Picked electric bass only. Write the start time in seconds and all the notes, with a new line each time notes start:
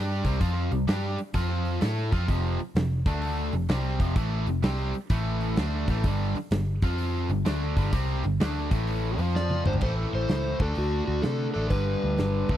Already playing: G2
0.24 C2
0.41 F2
0.72 C2
0.88 G2
1.34 F2
1.82 A2
2.13 F2
2.28 F1
2.60 muted picked electric bass stroke
2.75 F1
3.06 D2
3.53 F1
3.69 C2
4.00 F1
4.16 A1
4.47 F1
4.63 C2
5.10 A1
5.58 D2
5.88 A1
6.04 G1
6.36 muted picked electric bass stroke
6.51 G1
6.82 F2
7.29 G1
7.45 D2
7.77 G1
7.93 C2
8.24 G1
8.40 D2
8.71 A1
9.18 F2
9.66 G1
9.81 A1
10.13 A1
10.29 C#2
10.60 D2
10.77 D2
11.08 D2
11.25 C3
11.56 A1
11.70 G1
12.04 D2
12.19 G1
12.49 D2